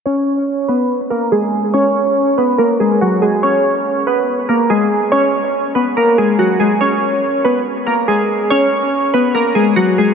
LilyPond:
\new Staff \with { instrumentName = "Synth keys" } { \time 4/4 \key ges \major \tempo 4 = 142 <des' des''>4. <ces' ces''>8 r8 <bes bes'>8 <aes aes'>4 | <des' des''>4. <ces' ces''>8 <bes bes'>8 <aes aes'>8 <ges ges'>8 <aes aes'>8 | <des' des''>4. <ces' ces''>8 r8 <bes bes'>8 <aes aes'>4 | <des' des''>4. <ces' ces''>8 <bes bes'>8 <aes aes'>8 <ges ges'>8 <aes aes'>8 |
<des' des''>4. <ces' ces''>8 r8 <bes bes'>8 <aes aes'>4 | <des' des''>4. <ces' ces''>8 <bes bes'>8 <aes aes'>8 <ges ges'>8 <aes aes'>8 | }